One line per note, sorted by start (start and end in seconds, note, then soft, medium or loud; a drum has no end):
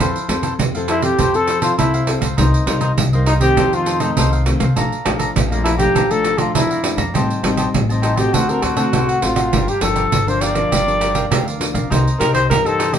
0.00 0.12 F2 medium
0.00 0.57 F3 medium
0.00 0.18 C4 soft
0.00 0.27 E4 medium
0.00 0.18 E4 soft
0.00 0.28 A4 medium
0.00 0.18 A4 soft
0.00 0.29 C5 medium
0.00 0.29 F5 medium
0.00 pandeiro medium
0.16 pandeiro soft
0.28 0.54 F2 medium
0.28 0.69 C4 medium
0.28 0.42 E4 soft
0.28 0.69 E4 medium
0.28 0.42 A4 soft
0.28 0.70 A4 medium
0.28 0.43 C5 soft
0.28 0.43 F5 soft
0.28 pandeiro medium
0.43 0.53 E4 medium
0.43 0.53 A4 medium
0.43 0.53 C5 medium
0.43 0.53 F5 medium
0.43 pandeiro soft
0.59 1.10 F2 medium
0.59 1.16 C3 soft
0.59 pandeiro medium
0.75 1.00 C4 medium
0.75 1.00 E4 medium
0.75 1.00 A4 medium
0.75 0.87 A4 soft
0.75 0.88 C5 soft
0.75 0.88 F5 soft
0.75 pandeiro soft
0.88 1.02 E4 medium
0.88 1.05 E4 medium
0.88 1.03 A4 medium
0.88 1.02 C5 medium
0.88 1.01 F5 medium
0.88 pandeiro medium
1.02 1.28 C4 medium
1.02 1.28 E4 medium
1.02 1.37 G4 medium
1.02 1.29 A4 medium
1.02 1.18 A4 soft
1.02 1.17 C5 soft
1.02 1.17 F5 soft
1.02 pandeiro medium
1.19 1.69 F2 medium
1.19 1.76 F3 medium
1.19 1.46 E4 medium
1.19 1.47 A4 medium
1.19 1.48 C5 medium
1.19 1.48 F5 medium
1.19 pandeiro medium
1.34 1.59 C4 medium
1.34 1.59 E4 medium
1.34 1.59 A4 medium
1.34 1.62 A4 medium
1.34 pandeiro soft
1.47 1.60 E4 soft
1.47 1.61 A4 soft
1.47 1.61 C5 soft
1.47 1.61 F5 medium
1.47 pandeiro soft
1.61 2.02 C4 soft
1.61 1.71 E4 medium
1.61 2.02 E4 soft
1.61 1.77 F4 medium
1.61 1.72 A4 medium
1.61 2.03 A4 medium
1.61 1.72 C5 medium
1.61 1.72 F5 medium
1.61 pandeiro medium
1.78 2.16 C2 medium
1.78 2.35 C3 soft
1.78 1.92 E4 medium
1.78 2.20 E4 medium
1.78 1.92 A4 medium
1.78 1.93 C5 medium
1.78 1.93 F5 medium
1.78 pandeiro medium
1.94 2.22 A4 soft
1.94 2.21 C5 soft
1.94 2.20 F5 soft
1.94 pandeiro soft
2.07 2.27 C4 soft
2.07 2.27 E4 soft
2.07 2.27 A4 medium
2.07 pandeiro medium
2.21 2.35 C#2 medium
2.21 2.37 A4 soft
2.21 2.36 C5 soft
2.21 2.36 F5 soft
2.21 pandeiro medium
2.37 2.51 C2 loud
2.37 2.95 C3 soft
2.37 2.63 G3 soft
2.37 2.63 A#3 soft
2.37 2.66 D#4 medium
2.37 2.63 D#4 medium
2.37 2.67 A#4 medium
2.37 2.67 C5 medium
2.37 2.67 D#5 medium
2.37 pandeiro medium
2.54 pandeiro soft
2.66 2.92 C2 medium
2.66 3.07 G3 medium
2.66 3.08 A#3 medium
2.66 2.80 D#4 soft
2.66 3.08 D#4 medium
2.66 2.80 A#4 soft
2.66 2.81 C5 soft
2.66 2.81 D#5 soft
2.66 pandeiro medium
2.81 2.91 D#4 medium
2.81 2.91 A#4 medium
2.81 2.91 C5 medium
2.81 2.91 D#5 medium
2.81 pandeiro soft
2.97 3.48 C2 medium
2.97 3.54 G2 medium
2.97 pandeiro medium
3.13 3.38 G3 medium
3.13 3.38 A#3 medium
3.13 3.38 D#4 soft
3.13 3.26 A#4 soft
3.13 3.27 C5 soft
3.13 3.26 D#5 soft
3.13 pandeiro soft
3.26 3.41 D#4 medium
3.26 3.34 D#4 medium
3.26 3.41 A#4 medium
3.26 3.41 C5 medium
3.26 3.39 D#5 medium
3.26 pandeiro medium
3.41 3.67 D#3 medium
3.41 3.67 A3 soft
3.41 3.67 C4 medium
3.41 3.76 G4 medium
3.41 3.56 A#4 soft
3.41 3.56 C5 soft
3.41 3.55 D#5 soft
3.41 pandeiro soft
3.57 4.08 F2 medium
3.57 4.14 F2 medium
3.57 3.84 D#4 medium
3.57 3.85 A4 medium
3.57 3.86 C5 medium
3.57 3.87 F5 medium
3.57 pandeiro medium
3.73 3.98 D#3 soft
3.73 3.98 A3 soft
3.73 3.98 C4 medium
3.73 4.02 F4 medium
3.73 pandeiro soft
3.86 3.99 D#4 soft
3.86 3.99 A4 soft
3.86 4.00 C5 soft
3.86 4.00 F5 medium
3.86 pandeiro soft
4.00 4.41 D#3 soft
4.00 4.41 A3 medium
4.00 4.42 C4 medium
4.00 4.10 D#4 medium
4.00 4.46 D#4 medium
4.00 4.10 A4 medium
4.00 4.10 C5 medium
4.00 4.10 F5 medium
4.00 pandeiro soft
4.17 4.55 C2 medium
4.17 4.74 C3 soft
4.17 4.31 D#4 medium
4.17 4.31 A4 medium
4.17 4.31 C5 medium
4.17 4.32 F5 medium
4.17 pandeiro medium
4.33 4.61 A4 soft
4.33 4.60 C5 soft
4.33 4.59 F5 soft
4.33 pandeiro soft
4.46 4.66 D#3 soft
4.46 4.66 A3 soft
4.46 4.66 C4 medium
4.46 pandeiro medium
4.60 4.73 C2 medium
4.60 4.75 A4 soft
4.60 4.75 C5 soft
4.60 4.74 F5 soft
4.60 pandeiro medium
4.76 4.89 A#1 medium
4.76 5.33 A#2 soft
4.76 4.94 F3 soft
4.76 4.95 A3 soft
4.76 4.94 D4 medium
4.76 5.04 A4 medium
4.76 5.04 D5 medium
4.76 5.05 F5 medium
4.76 5.06 A#5 medium
4.76 pandeiro medium
4.92 pandeiro soft
5.05 5.31 A#1 medium
5.05 5.46 F3 medium
5.05 5.46 A3 medium
5.05 5.46 D4 medium
5.05 5.18 A4 soft
5.05 5.18 D5 soft
5.05 5.19 F5 soft
5.05 5.19 A#5 soft
5.05 pandeiro medium
5.19 5.29 A4 medium
5.19 5.29 D5 medium
5.19 5.29 F5 medium
5.19 5.30 A#5 medium
5.19 pandeiro soft
5.36 5.86 A#1 loud
5.36 5.93 F2 soft
5.36 pandeiro medium
5.51 5.76 F3 medium
5.51 5.76 A3 medium
5.51 5.76 D4 medium
5.51 5.64 D5 soft
5.51 5.64 F5 soft
5.51 5.65 A#5 soft
5.51 pandeiro soft
5.64 5.77 E4 medium
5.64 5.79 A4 medium
5.64 5.79 D5 medium
5.64 5.79 F5 medium
5.64 5.77 A#5 medium
5.64 pandeiro medium
5.78 6.05 F3 medium
5.78 6.05 A3 medium
5.78 6.05 D4 medium
5.78 6.12 G4 medium
5.78 5.94 D5 soft
5.78 5.94 F5 soft
5.78 5.93 A#5 soft
5.78 pandeiro medium
5.95 6.46 A#1 medium
5.95 6.52 A#2 medium
5.95 6.22 A4 medium
5.95 6.23 D5 medium
5.95 6.24 F5 medium
5.95 6.25 A#5 medium
5.95 pandeiro medium
6.10 6.35 F3 medium
6.10 6.36 A3 medium
6.10 6.36 D4 medium
6.10 6.40 A4 medium
6.10 pandeiro soft
6.24 6.37 A4 soft
6.24 6.38 D5 soft
6.24 6.38 F5 soft
6.24 6.38 A#5 soft
6.24 pandeiro medium
6.38 6.79 F3 medium
6.38 6.79 A3 medium
6.38 6.79 D4 medium
6.38 6.54 F4 medium
6.38 6.48 A4 medium
6.38 6.48 D5 medium
6.38 6.49 F5 medium
6.38 6.49 A#5 medium
6.38 pandeiro medium
6.55 6.93 F2 medium
6.55 7.11 F2 soft
6.55 6.97 E4 medium
6.55 6.68 A4 medium
6.55 6.69 D5 medium
6.55 6.69 F5 medium
6.55 6.69 A#5 medium
6.55 pandeiro medium
6.70 6.98 D5 soft
6.70 6.97 F5 soft
6.70 6.96 A#5 soft
6.70 pandeiro soft
6.83 7.03 F3 medium
6.83 7.03 A3 soft
6.83 7.03 D4 medium
6.83 pandeiro medium
6.97 7.11 F2 medium
6.97 7.13 D5 soft
6.97 7.13 F5 soft
6.97 7.12 A#5 soft
6.97 pandeiro medium
7.14 7.27 A1 medium
7.14 7.71 A2 soft
7.14 7.39 G3 soft
7.14 7.39 C4 soft
7.14 7.40 D#4 soft
7.14 7.42 G4 medium
7.14 7.42 C5 medium
7.14 7.43 D#5 medium
7.14 7.44 A5 medium
7.14 pandeiro medium
7.30 pandeiro soft
7.43 7.69 A1 medium
7.43 7.84 G3 medium
7.43 7.84 C4 medium
7.43 7.84 D#4 medium
7.43 7.57 G4 soft
7.43 7.57 C5 soft
7.43 7.58 D#5 soft
7.43 7.58 A5 soft
7.43 pandeiro medium
7.57 7.67 G4 medium
7.57 7.68 C5 medium
7.57 7.68 D#5 medium
7.57 7.68 A5 medium
7.57 pandeiro soft
7.74 8.25 A1 medium
7.74 8.30 A2 soft
7.74 pandeiro medium
7.89 8.14 G3 medium
7.89 8.14 C4 medium
7.89 8.15 D#4 medium
7.89 8.02 C5 soft
7.89 8.02 D#5 soft
7.89 8.03 A5 soft
7.89 pandeiro soft
8.02 8.19 D#4 medium
8.02 8.17 G4 medium
8.02 8.17 C5 medium
8.02 8.16 D#5 medium
8.02 8.15 A5 medium
8.02 pandeiro medium
8.16 8.43 A3 soft
8.16 8.43 C4 medium
8.16 8.43 F#4 medium
8.16 8.35 G4 medium
8.16 8.32 C5 soft
8.16 8.32 D#5 soft
8.16 8.31 A5 soft
8.16 pandeiro soft
8.33 8.59 D2 medium
8.33 8.90 D3 soft
8.33 8.61 D4 medium
8.33 8.51 F#4 medium
8.33 8.62 A4 medium
8.33 8.62 C5 medium
8.33 8.63 F#5 medium
8.33 pandeiro medium
8.49 8.74 A3 soft
8.49 8.74 C4 medium
8.49 8.74 F#4 medium
8.49 8.64 A#4 medium
8.49 pandeiro soft
8.62 8.90 D2 medium
8.62 8.75 D4 soft
8.62 9.24 F#4 medium
8.62 8.76 A4 soft
8.62 8.76 C5 soft
8.62 8.77 F#5 medium
8.62 pandeiro medium
8.76 9.17 A3 medium
8.76 9.17 C4 medium
8.76 8.86 D4 medium
8.76 9.18 F#4 medium
8.76 8.87 A4 medium
8.76 8.87 C5 medium
8.76 8.87 F#5 medium
8.76 pandeiro soft
8.93 9.20 C2 medium
8.93 9.50 A2 soft
8.93 9.07 D4 medium
8.93 9.07 A4 medium
8.93 9.07 C5 medium
8.93 9.07 F#5 medium
8.93 pandeiro medium
9.08 9.37 A4 soft
9.08 9.36 C5 soft
9.08 9.35 F#5 soft
9.08 pandeiro soft
9.22 9.49 A1 medium
9.22 9.50 A3 soft
9.22 9.50 C4 medium
9.22 9.70 F4 medium
9.22 9.51 F#4 soft
9.22 pandeiro medium
9.36 9.52 A4 soft
9.36 9.51 C5 soft
9.36 9.50 F#5 soft
9.36 pandeiro medium
9.53 9.66 G1 medium
9.53 10.09 G2 soft
9.53 9.70 F3 soft
9.53 9.70 A#3 soft
9.53 9.71 D4 medium
9.53 9.81 G4 medium
9.53 9.82 A#4 medium
9.53 9.82 D5 medium
9.53 9.82 F5 medium
9.53 pandeiro medium
9.68 9.84 G4 medium
9.68 pandeiro soft
9.81 10.07 G1 medium
9.81 10.10 F3 medium
9.81 10.10 A#3 medium
9.81 10.10 D4 medium
9.81 9.94 G4 soft
9.81 10.30 A4 medium
9.81 9.95 A#4 soft
9.81 9.96 D5 soft
9.81 9.96 F5 soft
9.81 pandeiro medium
9.96 10.05 G4 medium
9.96 10.06 A#4 medium
9.96 10.06 D5 medium
9.96 10.06 F5 medium
9.96 pandeiro soft
10.12 10.63 G1 medium
10.12 10.69 D3 soft
10.12 pandeiro medium
10.27 10.52 F3 soft
10.27 10.52 A#3 medium
10.27 10.53 D4 medium
10.27 10.41 A#4 soft
10.27 10.43 C5 medium
10.27 10.41 D5 soft
10.27 10.41 F5 soft
10.27 pandeiro soft
10.41 10.55 G4 soft
10.41 10.56 A#4 medium
10.41 11.61 D5 medium
10.41 10.55 D5 medium
10.41 10.53 F5 medium
10.41 pandeiro medium
10.54 10.81 F3 medium
10.54 10.81 A#3 medium
10.54 10.81 D4 medium
10.54 10.71 A#4 soft
10.54 10.70 D5 soft
10.54 10.69 F5 soft
10.54 pandeiro soft
10.72 11.22 G1 medium
10.72 11.28 G2 medium
10.72 10.99 G4 medium
10.72 11.00 A#4 medium
10.72 11.01 D5 medium
10.72 11.01 F5 medium
10.72 pandeiro medium
10.87 11.12 F3 medium
10.87 11.12 A#3 soft
10.87 11.12 D4 medium
10.87 pandeiro soft
11.00 11.13 G4 soft
11.00 11.14 A#4 medium
11.00 11.15 D5 soft
11.00 11.15 F5 soft
11.00 pandeiro medium
11.14 11.55 F3 medium
11.14 11.55 A#3 medium
11.14 11.56 D4 medium
11.14 11.25 G4 medium
11.14 11.25 A#4 medium
11.14 11.25 D5 medium
11.14 11.25 F5 medium
11.14 pandeiro medium
11.31 11.69 D2 medium
11.31 11.87 D3 soft
11.31 11.45 G4 medium
11.31 11.45 A#4 medium
11.31 11.46 D5 medium
11.31 11.45 F5 medium
11.31 pandeiro medium
11.47 11.75 A#4 soft
11.47 11.74 D5 soft
11.47 11.73 F5 soft
11.47 pandeiro soft
11.60 11.88 F3 soft
11.60 11.88 A#3 medium
11.60 11.88 D4 medium
11.60 pandeiro medium
11.74 11.88 A#1 medium
11.74 11.90 A#4 soft
11.74 11.89 D5 soft
11.74 11.89 F5 soft
11.74 pandeiro soft
11.90 12.04 C2 medium
11.90 12.47 C3 soft
11.90 12.08 A#3 soft
11.90 12.18 D#4 medium
11.90 12.08 D#4 soft
11.90 12.09 G4 medium
11.90 12.19 A#4 medium
11.90 12.20 C5 medium
11.90 12.20 D#5 medium
11.90 pandeiro medium
12.08 pandeiro soft
12.19 12.45 C2 medium
12.19 12.60 A#3 medium
12.19 12.32 D#4 soft
12.19 12.60 D#4 medium
12.19 12.60 G4 medium
12.19 12.33 A#4 medium
12.19 12.33 A#4 soft
12.19 12.33 C5 soft
12.19 12.33 D#5 soft
12.19 pandeiro medium
12.33 12.43 D#4 medium
12.33 12.44 A#4 medium
12.33 12.48 C5 medium
12.33 12.44 C5 medium
12.33 12.44 D#5 medium
12.33 pandeiro soft
12.50 12.99 E2 medium
12.50 12.99 G2 soft
12.50 12.68 A#4 medium
12.50 pandeiro medium
12.65 12.90 A#3 medium
12.65 12.90 D#4 medium
12.65 12.90 G4 medium
12.65 12.95 A4 medium
12.65 12.78 A#4 soft
12.65 12.79 C5 soft
12.65 12.79 D#5 soft
12.65 pandeiro soft
12.79 12.93 D#4 medium
12.79 12.93 A#4 medium
12.79 12.93 C5 medium
12.79 12.91 D#5 medium
12.79 pandeiro medium
12.92 12.99 D#3 medium
12.92 12.99 A3 medium
12.92 12.99 C4 medium
12.92 12.99 G4 medium
12.92 12.99 A#4 soft
12.92 12.99 C5 soft
12.92 12.99 D#5 soft
12.92 pandeiro medium